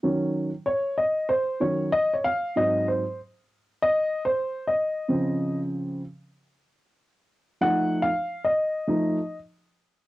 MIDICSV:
0, 0, Header, 1, 2, 480
1, 0, Start_track
1, 0, Tempo, 631579
1, 26, Time_signature, 4, 2, 24, 8
1, 7655, End_track
2, 0, Start_track
2, 0, Title_t, "Upright piano"
2, 0, Program_c, 0, 0
2, 23, Note_on_c, 0, 51, 53
2, 25, Note_on_c, 0, 54, 49
2, 30, Note_on_c, 0, 61, 60
2, 369, Note_off_c, 0, 51, 0
2, 370, Note_off_c, 0, 54, 0
2, 373, Note_off_c, 0, 61, 0
2, 500, Note_on_c, 0, 73, 92
2, 726, Note_off_c, 0, 73, 0
2, 741, Note_on_c, 0, 75, 81
2, 979, Note_on_c, 0, 72, 90
2, 991, Note_off_c, 0, 75, 0
2, 1218, Note_on_c, 0, 51, 50
2, 1221, Note_on_c, 0, 54, 42
2, 1223, Note_on_c, 0, 73, 79
2, 1226, Note_on_c, 0, 61, 50
2, 1230, Note_off_c, 0, 72, 0
2, 1438, Note_off_c, 0, 51, 0
2, 1439, Note_off_c, 0, 54, 0
2, 1442, Note_off_c, 0, 61, 0
2, 1448, Note_off_c, 0, 73, 0
2, 1462, Note_on_c, 0, 75, 105
2, 1622, Note_off_c, 0, 75, 0
2, 1622, Note_on_c, 0, 73, 72
2, 1705, Note_on_c, 0, 77, 100
2, 1710, Note_off_c, 0, 73, 0
2, 1929, Note_off_c, 0, 77, 0
2, 1944, Note_on_c, 0, 44, 51
2, 1948, Note_on_c, 0, 54, 46
2, 1953, Note_on_c, 0, 60, 57
2, 1953, Note_on_c, 0, 75, 93
2, 2173, Note_off_c, 0, 75, 0
2, 2190, Note_on_c, 0, 72, 75
2, 2290, Note_off_c, 0, 44, 0
2, 2292, Note_off_c, 0, 54, 0
2, 2294, Note_off_c, 0, 60, 0
2, 2411, Note_off_c, 0, 72, 0
2, 2907, Note_on_c, 0, 75, 112
2, 3204, Note_off_c, 0, 75, 0
2, 3230, Note_on_c, 0, 72, 88
2, 3553, Note_on_c, 0, 75, 79
2, 3558, Note_off_c, 0, 72, 0
2, 3864, Note_on_c, 0, 49, 60
2, 3868, Note_on_c, 0, 53, 47
2, 3872, Note_on_c, 0, 60, 58
2, 4239, Note_off_c, 0, 75, 0
2, 4555, Note_off_c, 0, 49, 0
2, 4556, Note_off_c, 0, 53, 0
2, 4558, Note_off_c, 0, 60, 0
2, 5783, Note_on_c, 0, 53, 50
2, 5788, Note_on_c, 0, 57, 49
2, 5788, Note_on_c, 0, 78, 107
2, 5794, Note_on_c, 0, 63, 61
2, 6085, Note_off_c, 0, 78, 0
2, 6098, Note_on_c, 0, 77, 97
2, 6129, Note_off_c, 0, 53, 0
2, 6132, Note_off_c, 0, 57, 0
2, 6135, Note_off_c, 0, 63, 0
2, 6418, Note_on_c, 0, 75, 82
2, 6432, Note_off_c, 0, 77, 0
2, 6744, Note_on_c, 0, 53, 49
2, 6748, Note_on_c, 0, 57, 52
2, 6751, Note_on_c, 0, 63, 62
2, 6961, Note_off_c, 0, 53, 0
2, 6963, Note_off_c, 0, 57, 0
2, 6964, Note_off_c, 0, 63, 0
2, 7112, Note_off_c, 0, 75, 0
2, 7655, End_track
0, 0, End_of_file